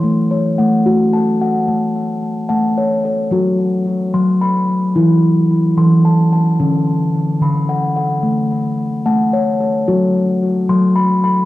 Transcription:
<<
  \new Staff \with { instrumentName = "Steel tongue drum" } { \time 6/8 \key a \major \tempo 4. = 73 << { c'''8 cis''8 fis''4 a''8 fis''8~ | fis''8 r4 a''8 cis''8 cis''8~ | cis''8 r4 c'''8 b''4~ | b''8 r4 c'''8 a''8 a''8~ |
a''8 r4 b''8 fis''8 fis''8~ | fis''8 r4 a''8 cis''8 cis''8~ | cis''8 r4 c'''8 b''8 b''8 | } \\ { a4 r8 fis'4 r8 | a4 r8 fis''4 r8 | fis'4 r2 | e'4 r2 |
cis'4 r2 | a4 r8 fis''4 r8 | fis'4 r2 | } >> }
  \new Staff \with { instrumentName = "Steel tongue drum" } { \clef bass \time 6/8 \key a \major r4 a8 a4. | r4. a4. | fis4. fis4. | e4. e4. |
d4. d4. | r4. a4. | fis4. fis4. | }
>>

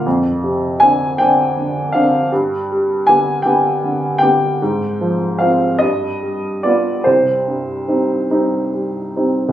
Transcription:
<<
  \new Staff \with { instrumentName = "Upright piano" } { \time 6/8 \key c \minor \tempo 4. = 51 r4 aes''8 g''4 f''8 | r4 aes''8 g''4 g''8~ | g''4 f''8 ees''4 d''8 | c''2~ c''8 r8 | }
  \new Staff \with { instrumentName = "Upright piano" } { \time 6/8 \key c \minor f,8 c8 <d c' d'>8 <d c' d'>8 d8 <d c' d'>8 | g,8 g8 <d b g'>8 <d b g'>8 d8 <d b g'>8 | aes,8 f8 <c' f'>8 g,8 g8 <b f'>8 | c,8 g,8 <g c' ees'>8 <g c' ees'>8 g8 <g c' ees'>8 | }
>>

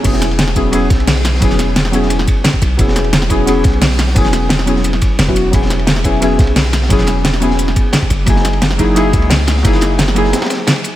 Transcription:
<<
  \new Staff \with { instrumentName = "Synth stab" } { \time 4/4 \key e \lydian \tempo 4 = 175 <fis b cis' e' gis'>4. <fis b cis' e' gis'>8 <fis b cis' e' gis'>2 | <fis b cis' e' gis'>4. <fis b cis' e' gis'>2~ <fis b cis' e' gis'>8 | <fis b cis' e' gis'>4. <fis b cis' e' gis'>8 <fis b cis' e' gis'>2 | <fis b cis' e' gis'>4. <fis b cis' e' gis'>4.~ <fis b cis' e' gis'>16 <fis b cis' e' fis'>8. |
<fis b cis' e' gis'>4. <fis b cis' e' gis'>8 <fis b cis' e' gis'>2 | <fis b cis' e' gis'>4. <fis b cis' e' gis'>2 r8 | <fis ais dis' e' gis'>4. <fis ais dis' e' gis'>8 <fis ais dis' e' gis'>2 | <fis ais dis' e' gis'>4. <fis ais dis' e' gis'>2~ <fis ais dis' e' gis'>8 | }
  \new Staff \with { instrumentName = "808-style bass" } { \clef bass \time 4/4 \key e \lydian e,,2~ e,,8 b,,4. | e,,2~ e,,8 r4 b,,8 | e,,2~ e,,8 b,,4. | e,,2~ e,,8 r8 e,,4 |
e,,2~ e,,8 b,,4. | e,,2~ e,,8 r4 fis,,8 | fis,,2~ fis,,8 cis,4. | fis,,2 r2 | }
  \new DrumStaff \with { instrumentName = "Drums" } \drummode { \time 4/4 <cymc hh bd cymr>16 sn16 <hh cymr sn>16 cymr16 <hh cymr sn>16 sn16 <hh bd cymr>8 <hh cymr>8 <hh bd cymr sn>16 cymr16 <hh hho sn>16 cymr16 <hh cymr sn>16 sn16 | <hh bd cymr>16 <cymr sn>16 <hh cymr sn>8 <hh cymr sn>16 sn16 <hh cymr>16 sn16 <hh cymr>16 sn16 <hh bd cymr>8 <hh cymr sn>16 <bd cymr>16 <hh cymr>8 | <hh bd cymr>16 sn16 <hh cymr sn>16 cymr16 <hh cymr sn>16 sn16 <hh bd cymr>8 <hh cymr>8 <hh bd cymr sn>16 cymr16 <hh hho sn>16 cymr16 <hh cymr sn>16 sn16 | <hh bd cymr>16 <cymr sn>16 <hh cymr sn>8 <hh cymr sn>16 sn16 <hh cymr>16 sn16 <hh cymr>16 sn16 <hh bd cymr>8 <hh cymr sn>16 <bd cymr>16 <hh cymr>8 |
<hh bd cymr>16 sn16 <hh cymr sn>16 cymr16 <hh cymr sn>16 sn16 <hh bd cymr>8 <hh cymr>8 <hh bd cymr sn>16 cymr16 <hh hho sn>16 cymr16 <hh cymr sn>16 sn16 | <hh bd cymr>16 <cymr sn>16 <hh cymr sn>8 <hh cymr sn>16 sn16 <hh cymr>16 sn16 <hh cymr>16 sn16 <hh bd cymr>8 <hh cymr sn>16 <bd cymr>16 <hh cymr>8 | <hh bd cymr>16 sn16 <hh cymr sn>16 cymr16 <hh cymr sn>16 sn16 <hh bd cymr>8 <hh cymr>8 <hh bd cymr>16 cymr16 <hh hho sn>16 cymr16 <hh cymr sn>16 sn16 | <hh bd cymr>16 <cymr sn>16 <hh cymr sn>8 <hh cymr sn>16 sn16 <hh cymr>16 sn16 <hh cymr sn>16 <cymr sn>32 <cymr sn>32 <hh cymr sn>8 <hh cymr sn>16 cymr16 <hh cymr>8 | }
>>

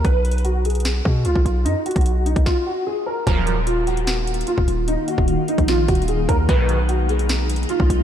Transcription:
<<
  \new Staff \with { instrumentName = "Grand piano" } { \time 4/4 \key ees \minor \tempo 4 = 149 b'4 fis'8 aes'4. f'4 | ees'8 fis'4 ees'8 f'8 fis'8 aes'8 bes'8 | bes'4 f'8 ges'4. f'4 | ees'8 ges'4 ees'8 f'8 ges'8 aes'8 bes'8 |
b'4 fis'8 gis'4. f'4 | }
  \new Staff \with { instrumentName = "Ambient pad" } { \time 4/4 \key ees \minor r1 | r1 | <ees bes ees' f''>1~ | <ees bes ees' f''>1 |
<gis b dis'>1 | }
  \new Staff \with { instrumentName = "Analog polysynth" } { \clef bass \time 4/4 \key ees \minor r1 | r1 | <ges, bes, f>8. r2. r16 | r1 |
<gis, b, dis>8. r2. r16 | }
  \new Staff \with { instrumentName = "808-style bass" } { \clef bass \time 4/4 \key ees \minor b,,2~ b,,8 b,8 des,16 b,,16 b,,8 | fis,16 r8 b,,4 b,,16 r2 | ees,,2. r16 ees,,16 ees,,8~ | ees,,16 r8 ees,,8 r8 bes,,8. ees,,4 ees,8 |
b,,2. r16 b,,16 b,,8 | }
  \new DrumStaff \with { instrumentName = "Drums" } \drummode { \time 4/4 \tuplet 3/2 { <hh bd>16 r16 r16 hh16 hh16 hh16 } hh8 hh32 hh32 hh32 hh32 <hh sn>8 bd8 hh16 bd16 hh8 | hh8 hh32 hh32 <hh bd>32 hh32 hh8 hh16 <hh bd>16 <bd sn>4 r4 | <hh bd>8 hh8 hh8 hh16 hh16 \tuplet 3/2 { <hh sn>16 r16 r16 hh16 hh16 hh16 } hh16 bd16 hh8 | hh8 hh16 bd16 hh8 hh16 <hh bd>16 \tuplet 3/2 { <hh sn>16 r16 r16 <hh bd>16 hh16 hh16 } hh8 <hh bd>8 |
<hh bd>8 hh8 hh8 hh16 hh16 \tuplet 3/2 { <hh sn>16 r16 r16 hh16 hh16 hh16 } hh16 bd16 hh8 | }
>>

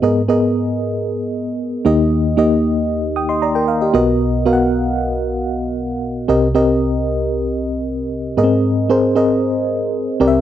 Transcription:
<<
  \new Staff \with { instrumentName = "FM electric piano" } { \time 4/4 \key aes \lydian \tempo 4 = 115 << { r1 | r2 <g'' ees'''>16 <ees'' c'''>16 <d'' bes''>16 <bes' g''>16 f''16 <g' ees''>8 r16 | r1 | r1 |
r1 | } \\ { <ces' aes' bes' ees''>8 <ces' aes' bes' ees''>4. r4. <bes ees' g' ees''>8~ | <bes ees' g' ees''>8 <bes ees' g' ees''>4. r4. <b fis' ais' dis''>8~ | <b fis' ais' dis''>8 <b fis' ais' f'' fis''>4. r2 | <c' g' bes' ees''>8 <c' g' bes' ees''>4. r2 |
<ces' c' aes' bes' ees''>8 r8 <c' aes' bes' c''>8 <c' aes' bes' ees''>4. r8 <c' g' bes' d'' e''>8 | } >> }
  \new Staff \with { instrumentName = "FM electric piano" } { \clef bass \time 4/4 \key aes \lydian aes,2.~ aes,8 <ees, ees>8~ | <ees, ees>2.~ <ees, ees>8 <b,, b,>8~ | <b,, b,>2.~ <b,, b,>8 r8 | <c, c>1 |
aes,2.~ aes,8 <c, c>8 | }
>>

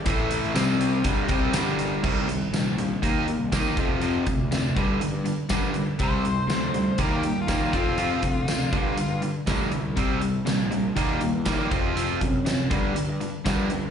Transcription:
<<
  \new Staff \with { instrumentName = "Lead electric guitar" } { \time 4/4 \key g \minor \tempo 4 = 121 r1 | r1 | r1 | c''2 bes'16 g'8 f'8. f'8~ |
f'2~ f'8 r4. | r1 | r1 | }
  \new Staff \with { instrumentName = "Tonewheel organ" } { \time 4/4 \key g \minor <e a e' a'>4 <g c' g' c''>4 <bes d' g' bes'>2 | r1 | r1 | r1 |
r1 | r1 | r1 | }
  \new Staff \with { instrumentName = "Overdriven electric guitar" } { \clef bass \time 4/4 \key g \minor <a, e a>4 <c g c'>4 <g, d g>8 <c g c'>8 <g, d g>4 | <c ees g>8 <c ees>8 <c ees>8 <c ees>8 <ees bes ees'>8 <ees bes>8 <ees bes ees'>8 <f, c f>8 | <f, c f>8 <f, c>8 <f, c>8 <g, d g>8 <g, d>8 <g, d>8 <g, d g>8 <g, d>8 | <c g c'>8 <c g>8 <c g>8 <c g>8 <ees g bes>8 <ees g>8 <ees g bes>8 <f c' f'>8 |
<f c' f'>8 <f c'>8 <f c'>8 <g, d g>8 <g, d>8 <g, d>8 <g, d g>8 <g, d>8 | <c g c'>8 <c g>8 <c g>8 <c g>8 <ees g bes>8 <ees g>8 <ees g bes>8 <f c' f'>8 | <f c' f'>8 <f c'>8 <f c'>8 <g, d g>8 <g, d>8 <g, d>8 <g, d g>8 <g, d>8 | }
  \new Staff \with { instrumentName = "Overdriven electric guitar" } { \clef bass \time 4/4 \key g \minor <a, e a>4 <c g c'>4 <g, d g>8 <c g c'>8 <g, d g>4 | <c g c'>8 <c g>8 <c g>8 <c g>8 <ees bes ees'>8 <ees bes>8 <ees bes ees'>8 <f, c f>8 | <f, c f>8 <f, c>8 <f, c>8 <g, d g>8 <g, d>8 <g, d>8 <g, d g>8 <g, d>8 | <c g c'>8 <c g>8 <c g>8 <c g>8 <ees bes ees'>8 <ees bes>8 <ees bes ees'>8 <f, c f>8 |
<f, c f>8 <f, c>8 <f, c>8 <g, d g>8 <g, d>8 <g, d>8 <g, d g>8 <g, d>8 | <c g c'>8 <c g>8 <c g>8 <c g>8 <ees bes ees'>8 <ees bes>8 <ees bes ees'>8 <f, c f>8 | <f, c f>8 <f, c>8 <f, c>8 <g, d g>8 <g, d>8 <g, d>8 <g, d g>8 <g, d>8 | }
  \new Staff \with { instrumentName = "Picked electric bass" } { \clef bass \time 4/4 \key g \minor a,,4 c,4 g,,8 c,8 g,,4 | c,4 bes,,4 ees,8. c,8 r16 f,8~ | f,8 d,4 g,8 r16 g,8 r8 g,8 r16 | c,4 d,4 ees,8. ees,8 r16 f,8~ |
f,8 d,4 g,8 r16 g,8 r16 d,8 c,8 | c,4 bes,,4 ees,8. e,8 r16 f,8~ | f,8 fis,4 g,8 r16 g,8 r8 g,8 r16 | }
  \new DrumStaff \with { instrumentName = "Drums" } \drummode { \time 4/4 <hh bd>8 hh16 sn16 <hh sn tamb>8 hh8 <hh bd>8 <hh bd>8 <hh sn tamb>8 hh8 | <cymc bd>8 hh8 <hh sn tamb>8 hh8 <hh bd>8 hh8 <hh bd sn tamb>8 <hh bd>8 | hh8 <hh bd>8 <hh sn tamb>8 <hh bd>8 hh8 hh8 <hh bd sn tamb>8 hh8 | <hh bd>8 hh8 <hh sn tamb>8 hh8 <hh bd>8 hh8 <hh bd sn tamb>8 <hh bd>8 |
hh8 <hh bd>8 <hh sn tamb>8 <hh bd>8 hh8 hh8 <hh bd sn tamb>8 hh8 | <hh bd>8 hh8 <hh sn tamb>8 hh8 <hh bd>8 hh8 <hh bd sn tamb>8 <hh bd>8 | hh8 <hh bd>8 <hh sn tamb>8 <hh bd>8 hh8 hh8 <hh bd sn tamb>8 hh8 | }
>>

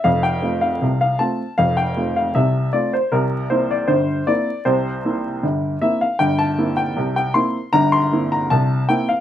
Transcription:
<<
  \new Staff \with { instrumentName = "Upright piano" } { \time 2/4 \key f \major \tempo 4 = 78 f''16 g''8 f''8 f''16 a''8 | f''16 g''8 f''16 e''8 d''16 c''16 | bes'8 c''16 d''16 c''8 d''8 | c''4 r8 e''16 f''16 |
g''16 a''8 g''8 g''16 c'''8 | bes''16 c'''8 bes''16 a''8 g''16 f''16 | }
  \new Staff \with { instrumentName = "Upright piano" } { \time 2/4 \key f \major <f,, f,>8 <a c' f'>8 <c, c>8 <a c' f'>8 | <f,, f,>8 <a c' f'>8 <c, c>8 <a c' f'>8 | <c, c>8 <bes c' e'>8 <g,, g,>8 <bes c' e'>8 | <c, c>8 <bes c' e'>8 <g,, g,>8 <bes c' e'>8 |
<g,, g,>8 <bes c' e'>8 <c, c>8 <bes c' e'>8 | <g,, g,>8 <bes c' e'>8 <c, c>8 <bes c' e'>8 | }
>>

